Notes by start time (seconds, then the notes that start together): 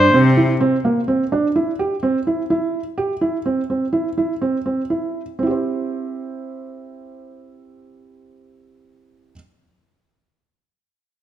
Already playing: C5
0.13 C3 C4
0.37 E4
0.61 C4
0.85 A#3
1.08 C4
1.32 D4
1.56 E4
1.79 G4
2.03 C4
2.27 E4
2.50 E4
2.98 G4
3.21 E4
3.46 C4
3.70 C4
3.93 E4
4.18 E4
4.41 C4
4.66 C4
4.90 E4
5.39 C4
5.43 E4 G4
5.51 C5